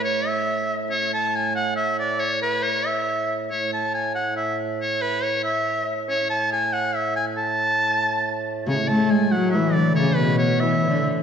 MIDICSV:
0, 0, Header, 1, 4, 480
1, 0, Start_track
1, 0, Key_signature, 3, "major"
1, 0, Tempo, 433526
1, 993, Time_signature, 6, 3, 24, 8
1, 6749, Tempo, 429185
1, 12489, End_track
2, 0, Start_track
2, 0, Title_t, "Shawm"
2, 0, Program_c, 0, 111
2, 46, Note_on_c, 0, 73, 83
2, 300, Note_on_c, 0, 76, 86
2, 316, Note_off_c, 0, 73, 0
2, 827, Note_off_c, 0, 76, 0
2, 1002, Note_on_c, 0, 73, 87
2, 1222, Note_off_c, 0, 73, 0
2, 1258, Note_on_c, 0, 81, 82
2, 1500, Note_on_c, 0, 80, 87
2, 1517, Note_off_c, 0, 81, 0
2, 1718, Note_off_c, 0, 80, 0
2, 1724, Note_on_c, 0, 78, 88
2, 1943, Note_off_c, 0, 78, 0
2, 1950, Note_on_c, 0, 76, 80
2, 2176, Note_off_c, 0, 76, 0
2, 2208, Note_on_c, 0, 74, 84
2, 2431, Note_on_c, 0, 73, 88
2, 2447, Note_off_c, 0, 74, 0
2, 2673, Note_off_c, 0, 73, 0
2, 2681, Note_on_c, 0, 71, 74
2, 2913, Note_on_c, 0, 73, 82
2, 2930, Note_off_c, 0, 71, 0
2, 3170, Note_on_c, 0, 76, 78
2, 3187, Note_off_c, 0, 73, 0
2, 3703, Note_off_c, 0, 76, 0
2, 3879, Note_on_c, 0, 73, 80
2, 4101, Note_off_c, 0, 73, 0
2, 4135, Note_on_c, 0, 81, 77
2, 4349, Note_off_c, 0, 81, 0
2, 4364, Note_on_c, 0, 80, 81
2, 4583, Note_off_c, 0, 80, 0
2, 4598, Note_on_c, 0, 78, 79
2, 4819, Note_off_c, 0, 78, 0
2, 4835, Note_on_c, 0, 76, 68
2, 5057, Note_off_c, 0, 76, 0
2, 5326, Note_on_c, 0, 73, 80
2, 5557, Note_on_c, 0, 71, 72
2, 5573, Note_off_c, 0, 73, 0
2, 5795, Note_on_c, 0, 73, 78
2, 5812, Note_off_c, 0, 71, 0
2, 6019, Note_off_c, 0, 73, 0
2, 6025, Note_on_c, 0, 76, 85
2, 6527, Note_off_c, 0, 76, 0
2, 6737, Note_on_c, 0, 73, 90
2, 6966, Note_off_c, 0, 73, 0
2, 6979, Note_on_c, 0, 81, 97
2, 7207, Note_off_c, 0, 81, 0
2, 7227, Note_on_c, 0, 80, 95
2, 7461, Note_on_c, 0, 78, 88
2, 7478, Note_off_c, 0, 80, 0
2, 7711, Note_on_c, 0, 76, 86
2, 7728, Note_off_c, 0, 78, 0
2, 7933, Note_off_c, 0, 76, 0
2, 7940, Note_on_c, 0, 80, 90
2, 8051, Note_off_c, 0, 80, 0
2, 8182, Note_on_c, 0, 81, 97
2, 9345, Note_off_c, 0, 81, 0
2, 9621, Note_on_c, 0, 73, 82
2, 9868, Note_on_c, 0, 81, 81
2, 9884, Note_off_c, 0, 73, 0
2, 10111, Note_on_c, 0, 80, 85
2, 10128, Note_off_c, 0, 81, 0
2, 10353, Note_on_c, 0, 78, 78
2, 10370, Note_off_c, 0, 80, 0
2, 10559, Note_off_c, 0, 78, 0
2, 10565, Note_on_c, 0, 76, 77
2, 10813, Note_on_c, 0, 74, 84
2, 10830, Note_off_c, 0, 76, 0
2, 11058, Note_off_c, 0, 74, 0
2, 11065, Note_on_c, 0, 73, 84
2, 11289, Note_on_c, 0, 71, 76
2, 11306, Note_off_c, 0, 73, 0
2, 11540, Note_off_c, 0, 71, 0
2, 11546, Note_on_c, 0, 73, 78
2, 11783, Note_on_c, 0, 76, 90
2, 11800, Note_off_c, 0, 73, 0
2, 12325, Note_off_c, 0, 76, 0
2, 12489, End_track
3, 0, Start_track
3, 0, Title_t, "Viola da gamba"
3, 0, Program_c, 1, 42
3, 9624, Note_on_c, 1, 49, 70
3, 9734, Note_off_c, 1, 49, 0
3, 9872, Note_on_c, 1, 57, 75
3, 10115, Note_on_c, 1, 56, 71
3, 10132, Note_off_c, 1, 57, 0
3, 10351, Note_off_c, 1, 56, 0
3, 10358, Note_on_c, 1, 54, 74
3, 10610, Note_on_c, 1, 52, 69
3, 10627, Note_off_c, 1, 54, 0
3, 10838, Note_on_c, 1, 50, 76
3, 10855, Note_off_c, 1, 52, 0
3, 11075, Note_off_c, 1, 50, 0
3, 11102, Note_on_c, 1, 49, 70
3, 11311, Note_off_c, 1, 49, 0
3, 11334, Note_on_c, 1, 47, 76
3, 11807, Note_on_c, 1, 52, 68
3, 11823, Note_off_c, 1, 47, 0
3, 12090, Note_off_c, 1, 52, 0
3, 12097, Note_on_c, 1, 50, 70
3, 12316, Note_off_c, 1, 50, 0
3, 12489, End_track
4, 0, Start_track
4, 0, Title_t, "Harmonium"
4, 0, Program_c, 2, 20
4, 0, Note_on_c, 2, 45, 62
4, 3876, Note_off_c, 2, 45, 0
4, 3892, Note_on_c, 2, 45, 63
4, 9634, Note_off_c, 2, 45, 0
4, 9651, Note_on_c, 2, 45, 68
4, 12489, Note_off_c, 2, 45, 0
4, 12489, End_track
0, 0, End_of_file